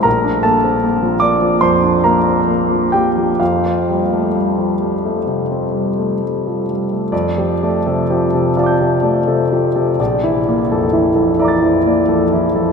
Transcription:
<<
  \new Staff \with { instrumentName = "Grand piano" } { \time 4/4 \key f \major \tempo 4 = 78 <bes' bes''>8 <a' a''>4 <d'' d'''>8 <c'' c'''>8 <bes' bes''>4 <g' g''>8 | <f' f''>2.~ <f' f''>8 r8 | r2 <f'' a'' d''' g'''>2 | r2 <e'' bes'' d''' a'''>2 | }
  \new Staff \with { instrumentName = "Grand piano" } { \time 4/4 \key f \major bes,,16 d'16 bes16 c'16 bes16 f16 bes16 f16 f,16 d'16 bes16 c'16 bes16 f16 bes16 f16 | f,16 c'16 g16 a16 g16 f16 g16 a16 c16 c'16 g16 a16 g16 f16 g16 a16 | \tuplet 3/2 { <f, d''>8 <f g'>8 <a d''>8 <c a'>8 <f g'>8 <c a'>8 <f d''>8 <c g'>8 <a d''>8 <c a'>8 <f g'>8 <c a'>8 } | \tuplet 3/2 { <bes,, d''>8 <e e'>8 <bes d''>8 <f, a'>8 <e e'>8 <f, a'>8 <e d''>8 <f, e'>8 <bes d''>8 <f, a'>8 <e e'>8 <f, a'>8 } | }
>>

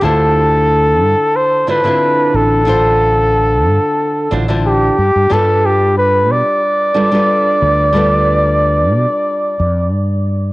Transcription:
<<
  \new Staff \with { instrumentName = "Flugelhorn" } { \time 4/4 \key d \dorian \tempo 4 = 91 a'2 c''8 b'4 a'8~ | a'2~ a'8 r8 g'4 | a'8 g'8 b'8 d''2~ d''8~ | d''2. r4 | }
  \new Staff \with { instrumentName = "Nylon-string guitar" } { \time 4/4 \key d \dorian <d d' e' f' c''>2~ <d d' e' f' c''>8 <d d' e' f' c''>16 <d c' d' e' f'>4~ <d c' d' e' f'>16 | <d d' e' f' c''>2~ <d d' e' f' c''>8 <d d' e' f' c''>16 <d d' e' f' c''>8. r8 | <g d' f' a' b'>2~ <g d' f' a' b'>8 <g d' f' a' b'>16 <g d' f' a' b'>4~ <g d' f' a' b'>16 | <g d' f' a' b'>2~ <g d' f' a' b'>8 r4. | }
  \new Staff \with { instrumentName = "Fretless electric bass" } { \clef bass \time 4/4 \key d \dorian d,4. g,16 r4. r16 a,,8~ | a,,4. g,16 r8. a,,8. r16 g,16 g,16 | g,4. b,16 r4. r16 d,8~ | d,4. b,16 r8. f,8 g,8. r16 | }
>>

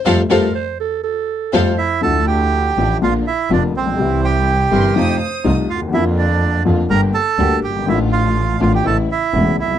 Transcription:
<<
  \new Staff \with { instrumentName = "Violin section" } { \time 4/4 \key f \major \tempo 4 = 123 <a' c'' f''>8 <a' c'' f''>8 r2 <a' c'' f''>8 r8 | \key d \minor r1 | r4. c'''8 ees'''8 ees'''8. r8. | r1 |
r1 | }
  \new Staff \with { instrumentName = "Bandoneon" } { \time 4/4 \key f \major r2. r8 <e' e''>8 | \key d \minor <a' a''>8 <g' g''>4. <f' f''>8 <e' e''>8 <d' d''>8 <c' c''>8~ | <c' c''>8 <g' g''>2 r4 <f' f''>8 | <e' e''>8 <d' d''>4 r8 <bes' bes''>8 <a' a''>4 <g' g''>8 |
<e' e''>8 <f' f''>4 <f' f''>16 <g' g''>16 <a' a''>8 <e' e''>4 <e' e''>8 | }
  \new Staff \with { instrumentName = "Clarinet" } { \time 4/4 \key f \major r8 bes'8 c''8 a'8 a'4 c''4 | \key d \minor r1 | r4. bes'8 c''4~ c''16 r8. | r1 |
r1 | }
  \new Staff \with { instrumentName = "String section" } { \time 4/4 \key f \major <f' g' a'>8 <f' g' a'>8 r2 <f' g' a'>8 r8 | \key d \minor <f d' e'>4. <f d' e'>8 <bes d' f'>8 r8 <bes d' f'>8 r8 | <g c' e'>4. <g c' e'>8 <a ees' f'>8 r8 <a ees' f'>8 r8 | <bes d' f'>4. <bes d' f'>8 <bes d' g'>8 r8 <bes d' g'>8 r8 |
<a d' f'>4. <a d' f'>8 <a cis' e'>8 r8 <a cis' e'>8 r8 | }
  \new Staff \with { instrumentName = "Upright piano" } { \clef bass \time 4/4 \key f \major <f g a>8 <f g a>8 r2 <f g a>8 r8 | \key d \minor <d, d f a e'>4. <a,, a, d f a e'>8 <bes,, bes, d f bes f'>8 r8 <f,, f, d f bes f'>8 r32 a,,32 bes,,32 b,,32 | <c, c e g e'>4. <g,, g, c e g e'>8 <f, c f a ees'>8 r8 <c, c f a ees'>8 r32 d,32 ees,32 e,32 | <f, d f bes f'>4. <f, d f bes f'>8 <g,, g, d g bes g'>8 r8 <d, d g bes g'>8 r32 fis,,32 g,,32 gis,,32 |
<a,, a, d f a f'>4. <a,, a, d f a f'>8 <a,, a, cis e a e'>8 r8 <e,, e, cis e a e'>8 r32 b,,32 c,32 r32 | }
  \new Staff \with { instrumentName = "Double bass" } { \clef bass \time 4/4 \key f \major f,8 f,8 r2 f,8 r8 | \key d \minor d,4. a,,8 bes,,8 r8 f,,8 bes,,8 | c,4. g,,8 f,8 r8 c,8 ees,8 | f,4. f,8 g,,8 r8 d,8 g,,8 |
a,,4. a,,8 a,,8 r8 e,,8 c,8 | }
>>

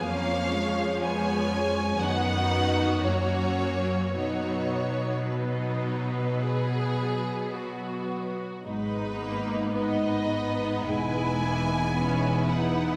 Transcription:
<<
  \new Staff \with { instrumentName = "Violin section" } { \time 4/4 \key b \major \tempo 4 = 55 eis''4 gis''4 fis''4 cis''4 | cis''4 b'2~ b'8 r8 | \key gis \minor r4 dis''4 gis''4. fis''8 | }
  \new Staff \with { instrumentName = "Violin section" } { \time 4/4 \key b \major << { cis''4 cis''4 fis'2 | fis'4 dis'4 gis'4 fis'4 | \key gis \minor b'4 b'4 b'2 | } \\ { cis'4 b8 cis'8 dis'4 cis'4 | dis'4 r2. | dis'4 dis'4 e'4 e'4 | } >> }
  \new Staff \with { instrumentName = "French horn section" } { \time 4/4 \key b \major r1 | r1 | \key gis \minor <b dis'>1 | }
  \new Staff \with { instrumentName = "Viola section" } { \time 4/4 \key b \major << { ais8 gis8 gis4 b4 ais8 ais8 | b1 | \key gis \minor dis'4 b2 cis'8 dis'8 | } \\ { eis2 dis4 fis4 | fis1 | gis8 ais8 b8 b8 gis8 ais8 b4 | } >> }
  \new Staff \with { instrumentName = "Cello section" } { \clef bass \time 4/4 \key b \major eis,2 fis,4 fis,4 | b,1 | \key gis \minor gis,2 e,2 | }
  \new Staff \with { instrumentName = "Double bass section" } { \clef bass \time 4/4 \key b \major r1 | r1 | \key gis \minor gis,,2 e,,2 | }
>>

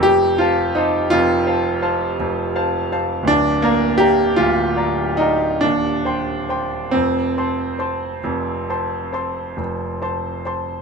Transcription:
\new Staff \with { instrumentName = "Grand piano" } { \time 9/8 \key f \mixolydian \tempo 4. = 48 << { <f,, f,>8 <c'' f'' a''>8 <c'' f'' a''>8 <f,, f,>8 <c'' f'' a''>8 <c'' f'' a''>8 <f,, f,>8 <c'' f'' a''>8 <c'' f'' a''>8 | <d,, d,>8 <d'' f'' bes''>8 <d'' f'' bes''>8 <d,, d,>8 <d'' f'' bes''>8 <d'' f'' bes''>8 <ees,, ees,>8 <c'' g'' c'''>8 <c'' g'' c'''>8 | <f,, f,>8 <c'' a'' c'''>8 <c'' a'' c'''>8 <f,, f,>8 <c'' a'' c'''>8 <c'' a'' c'''>8 <f,, f,>8 <c'' a'' c'''>8 <c'' a'' c'''>8 | } \\ { g'8 f'8 ees'8 f'2~ f'8 r8 | d'8 bes8 g'8 f'4 ees'8 d'4. | c'2. r4. | } >> }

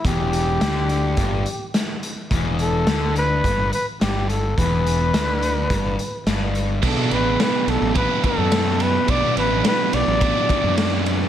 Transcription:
<<
  \new Staff \with { instrumentName = "Trumpet" } { \time 4/4 \key e \minor \tempo 4 = 106 g'2. r4 | r8 a'4 b'4 b'8 g'8 a'8 | b'2. r4 | a'8 b'8 b'8 a'8 b'8 a'4 b'8 |
d''8 b'8 b'8 d''2 r8 | }
  \new Staff \with { instrumentName = "Overdriven electric guitar" } { \time 4/4 \key e \minor r1 | r1 | r1 | <fis b d'>2 <fis b d'>2 |
<fis b d'>2 <fis b d'>2 | }
  \new Staff \with { instrumentName = "Distorted electric guitar" } { \clef bass \time 4/4 \key e \minor e,4 d4 g,8 r4. | e,4 d4 g,8 r8 g,4 | e,4 d4 g,8 r8 g,4 | <b, fis b d' fis'>2~ <b, fis b d' fis'>8 <b, fis b d' fis'>8 <b, fis b d' fis'>4 |
<b, fis b d' fis'>2~ <b, fis b d' fis'>8 <b, fis b d' fis'>8 <b, fis b d' fis'>4 | }
  \new Staff \with { instrumentName = "Fingered electric bass" } { \clef bass \time 4/4 \key e \minor e,,4 d,4 g,,8 r4. | e,,4 d,4 g,,8 r8 g,,4 | e,,4 d,4 g,,8 r8 g,,4 | b,,16 b,16 a,,8 r8 b,,16 a,,8 r8 fis,4~ fis,16 |
b,,16 b,16 a,,8 r8 b,,16 a,,8 r8 fis,4~ fis,16 | }
  \new DrumStaff \with { instrumentName = "Drums" } \drummode { \time 4/4 <hh bd>8 hh8 <hh sn>8 hh8 <hh bd>8 hh8 <hh sn>8 hh8 | <hh bd>8 hh8 <hh sn>8 hh8 <hh bd>8 hh8 <hh sn>8 hh8 | <hh bd>8 hh8 <hh sn>8 hh8 <hh bd>8 hh8 <hh sn>8 hh8 | <cymc bd>8 cymr8 <cymr sn>8 cymr8 <bd cymr>8 <bd cymr>8 <cymr sn>8 cymr8 |
<bd cymr>8 cymr8 <cymr sn>8 cymr8 <bd cymr>8 <bd cymr>8 <cymr sn>8 cymr8 | }
>>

